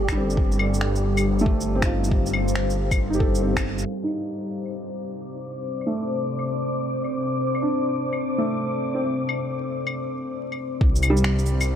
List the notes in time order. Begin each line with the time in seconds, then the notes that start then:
Already playing: G1 G3 A3 C4 D4 G4 A4 D5
0.08 finger snap, kick, claves, shaker
0.12 G3
0.17 C4
0.30 shaker
0.37 G1 G3 G4 C5 F5, kick
0.52 shaker
0.59 claves
0.74 shaker
0.81 finger snap
0.96 shaker
1.17 claves, shaker
1.39 A3, shaker
1.46 kick
1.61 shaker
1.75 C4
1.80 D#4, finger snap, kick, shaker
1.85 F4
2.04 shaker
2.11 kick
2.26 shaker
2.33 claves
2.48 shaker
2.55 finger snap
2.70 shaker
2.91 kick, claves, shaker
3.10 D#4, shaker
3.15 G4
3.19 A4, kick
3.35 shaker
3.42 C4
3.57 finger snap, kick, claves, shaker
3.78 shaker
3.85 C3 C4 C5 D5 D6
4.03 D#4
4.07 claves
4.65 claves
5.81 claves
5.86 A3
6.39 claves
7.04 claves
7.55 claves
7.62 D4
8.13 claves
8.38 A3
8.95 C4
9.29 claves
9.87 claves
10.52 claves
10.81 C2 G4 D5 C6, kick
10.96 shaker
11.03 cabasa, claves
11.10 G3
11.17 shaker
11.24 finger snap
11.39 shaker
11.46 cabasa
11.61 claves, shaker